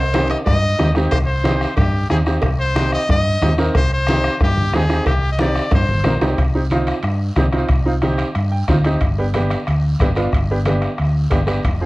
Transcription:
Already playing: fingered electric bass C2, trumpet C5
0.13 upright piano C4 D#4 G4, bombo rim, high conga, high timbale, short guiro
0.30 trumpet D#5, bombo rim, high timbale, short guiro
0.46 fingered electric bass G2, trumpet D#5, bombo low, bombo rim, cowbell, high conga, low conga, low timbale, long guiro
0.79 fingered electric bass D#2, upright piano C4 D#4 G4, bombo rim, high conga, low timbale, short guiro
0.95 upright piano C4 D#4 G4, bombo rim, low timbale, short guiro
1.11 fingered electric bass C2, trumpet C5, bombo low, bombo rim, cowbell, long guiro
1.26 trumpet C5
1.44 upright piano C4 D#4 G4, bombo rim, high conga, short guiro
1.61 bombo rim, short guiro
1.76 fingered electric bass G2, trumpet G4, bombo low, bombo rim, cowbell, high conga, low conga, long guiro
2.10 fingered electric bass D#2, upright piano C4 D#4 G4, trumpet G#4, bombo rim, high conga, short guiro
2.27 upright piano C4 D#4 G4, bombo rim, short guiro
2.42 fingered electric bass C2, bombo low, bombo rim, cowbell, high conga, long guiro
2.60 trumpet C5
2.75 upright piano C4 D#4 G4, bombo rim, high conga, short guiro
2.92 trumpet D#5, bombo rim, short guiro
3.09 fingered electric bass G2, trumpet D#5, bombo low, bombo rim, cowbell, high conga, low conga, long guiro
3.41 fingered electric bass D#2, upright piano C4 D#4 G4, bombo rim, high conga, low conga, low timbale, short guiro
3.58 upright piano C4 D#4 A#4, bombo rim, short guiro
3.75 fingered electric bass C2, trumpet C5, bombo low, bombo rim, cowbell, long guiro
3.93 trumpet C5
4.07 upright piano C4 D#4 G4, bombo rim, high conga, short guiro
4.24 bombo rim, short guiro
4.40 fingered electric bass G2, trumpet G4, bombo low, bombo rim, cowbell, high conga, low conga, long guiro
4.56 high conga
4.72 fingered electric bass D#2, upright piano C4 D#4 G4, trumpet G#4, bombo rim, high conga, low timbale, short guiro
4.89 upright piano C4 D#4 G4, bombo rim, short guiro
5.06 fingered electric bass C2, trumpet G4, bombo low, bombo rim, cowbell, high conga, long guiro
5.32 trumpet D#5
5.38 upright piano C4 D#4 G4, trumpet D5, bombo rim, high conga, short guiro
5.55 bombo rim, short guiro
5.71 fingered electric bass G2, trumpet C5, bombo low, bombo rim, cowbell, high conga, low conga, high timbale, long guiro
5.89 fingered electric bass G1, high conga
6.04 fingered electric bass A#1, upright piano C4 D#4 A#4, bombo rim, high conga, low timbale, short guiro
6.21 fingered electric bass C2, upright piano C4 D#4 G4, bombo rim, low timbale, short guiro
6.37 fingered electric bass C2, bombo low, bombo rim, high conga, high timbale, long guiro
6.55 upright piano C4 D#4 G4
6.70 upright piano C4 D#4 F4, bombo rim, high conga, high timbale, short guiro
6.87 bombo rim, high timbale, short guiro
7.03 fingered electric bass G2, bombo rim, high conga, high timbale, long guiro
7.36 fingered electric bass C2, upright piano C4 D#4 G4, bombo low, bombo rim, high conga, high timbale, low timbale, short guiro
7.52 upright piano C4 D#4 F4, bombo rim, high timbale, short guiro
7.69 fingered electric bass C2, bombo low, bombo rim, high conga, high timbale, long guiro
7.86 upright piano C4 D#4 F4
8.02 upright piano C4 D#4 G4, bombo rim, high conga, high timbale, short guiro
8.18 bombo rim, high timbale, short guiro
8.35 fingered electric bass G2, bombo rim, high conga, high timbale, long guiro
8.52 upright piano G5
8.68 fingered electric bass D2, upright piano C4 D#4 F4 F5, bombo low, bombo rim, high conga, high timbale, short guiro
8.84 upright piano C4 D#4 G4 D#5, bombo rim, high timbale, short guiro
9.00 fingered electric bass G1, bombo low, bombo rim, high conga, high timbale, long guiro
9.18 upright piano B3 D4 G4
9.34 upright piano B3 D4 G4, bombo rim, high conga, high timbale, short guiro
9.50 bombo rim, high timbale, short guiro
9.67 fingered electric bass D2, bombo rim, high conga, high timbale, long guiro
9.99 fingered electric bass G1, upright piano B3 D4 G4, bombo low, bombo rim, high conga, high timbale, short guiro
10.15 upright piano B3 D4 F4, bombo rim, high timbale, short guiro
10.32 fingered electric bass G1, bombo low, bombo rim, high conga, high timbale, long guiro
10.51 upright piano B3 D4 G4
10.65 upright piano B3 D4 G4, bombo rim, high conga, high timbale, short guiro
10.82 bombo rim, high timbale, short guiro
10.98 fingered electric bass D2, bombo rim, high conga, high timbale, long guiro
11.30 fingered electric bass G1, upright piano B3 D4 G4, bombo low, bombo rim, high conga, high timbale, short guiro
11.47 upright piano B3 D4 G4, bombo rim, high timbale, short guiro
11.63 fingered electric bass F1, bombo low, bombo rim, high conga, high timbale, long guiro
11.81 upright piano C4 F4 G#4

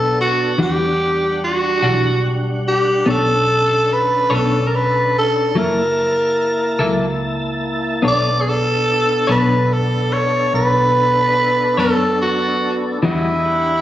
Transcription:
Already playing: fingered electric bass B1, tonewheel organ B3 D4 A4, tenor saxophone A4
0.21 tenor saxophone F#4
0.58 fingered electric bass E2, clean electric guitar E3 G3 D4 F#4, tonewheel organ G3 D4 F#5
0.62 tenor saxophone G4
1.45 tenor saxophone F#4
1.82 fingered electric bass B1, clean electric guitar E3 G3 D4 F#4
2.68 tenor saxophone G4
3.04 fingered electric bass B1, clean electric guitar B3 D4 A4, tonewheel organ C#4 D4 A4
3.09 tenor saxophone A4, clean electric guitar C#5
3.93 tenor saxophone B4
4.30 fingered electric bass B1, clean electric guitar B3 D4 A4 C#5
4.34 tenor saxophone A4
4.67 tenor saxophone A#4
4.75 tenor saxophone B4
5.18 tenor saxophone A4
5.55 fingered electric bass F#1, clean electric guitar F#3 A#3 E4 A4, tonewheel organ A#3 E4 A5
5.59 tenor saxophone A#4
6.79 fingered electric bass C#2, clean electric guitar F#3 A#3 E4 A4
8.02 fingered electric bass B1, clean electric guitar B3 D4 A4 C#5, tonewheel organ B3 D4 A4
8.08 tenor saxophone D5
8.41 tenor saxophone G#4
8.49 tenor saxophone A4
9.27 fingered electric bass B1, clean electric guitar B3 D4 A4 C#5
9.31 tenor saxophone B4
9.73 tenor saxophone A4
10.13 tenor saxophone C#5
10.54 fingered electric bass B1, tenor saxophone B4
11.77 fingered electric bass F#2, clean electric guitar B3 D4 A4 C#5, tenor saxophone A4
12.22 tenor saxophone F#4
13.03 fingered electric bass E2, clean electric guitar E3 G3 D4 F#4, tenor saxophone E4, tonewheel organ G4 G#4 D#5
13.44 tonewheel organ D4 G4 F#5

